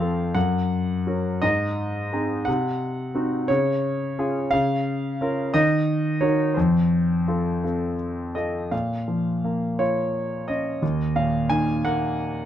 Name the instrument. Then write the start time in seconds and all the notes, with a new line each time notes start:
grand piano
Already playing: F2 F5
0.00 C4 F4 A4
0.35 F#2 F#5
1.07 C#4 F#4 A#4
1.42 G#2 D#5
2.13 C4 D#4 G#4
2.45 C3 F#5
3.15 C4 D#4 F#4
3.48 C#3 C#5
4.19 C#4 F4 G#4
4.51 C#3 F5
5.21 C#4 F4 A#4
5.54 D#3 D#5
6.21 D#4 F#4 A#4 C#5
6.54 F2 C5
7.28 C4 F4 A4
7.64 C4 F4 A4
8.35 C4 F4 A4 D#5
8.71 A#2 F5
9.08 F3
9.44 A#3
9.79 F4 C#5
10.48 C#4 D#5
10.82 D#2
11.16 A#2 F5
11.50 D#3 G#5
11.85 A#3 F#5